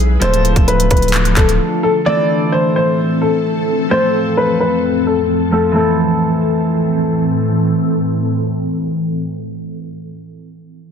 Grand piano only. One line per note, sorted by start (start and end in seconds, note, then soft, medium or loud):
0.00 0.18 G#4 medium
0.22 0.65 C5 loud
0.68 0.89 B4 medium
0.91 1.34 B4 medium
1.37 1.81 A4 medium
1.83 2.05 A4 medium
2.06 2.50 D5 loud
2.52 2.74 C5 medium
2.76 3.19 C5 medium
3.21 3.87 A4 medium
3.91 4.34 C5 loud
4.37 4.59 B4 medium
4.60 5.04 B4 medium
5.07 5.50 A4 medium
5.52 5.74 A4 medium
5.76 7.10 A4 medium